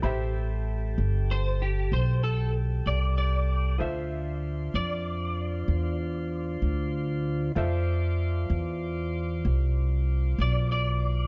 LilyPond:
<<
  \new Staff \with { instrumentName = "Clean electric guitar" } { \time 12/8 \key d \dorian \tempo 4. = 64 r2 c''8 g'8 c''8 a'8 r8 d''8 d''4 | e''4. d''2. r4. | r1 r8 d''8 d''4 | }
  \new Staff \with { instrumentName = "Upright piano" } { \time 12/8 \key d \dorian <g' c'' e'' b''>1. | <f' a' c'' e''>1. | <f' a' c'' e''>1. | }
  \new Staff \with { instrumentName = "Tonewheel organ" } { \time 12/8 \key d \dorian <g' a'>1. | <d' f' c''>1. | <f' c'' d''>1. | }
  \new Staff \with { instrumentName = "Upright bass" } { \clef bass \time 12/8 \key d \dorian a,,4. g,,4. b,,4. c,4. | d,4. f,4. e,4. d,4. | f,4. e,4. c,4. b,,4. | }
>>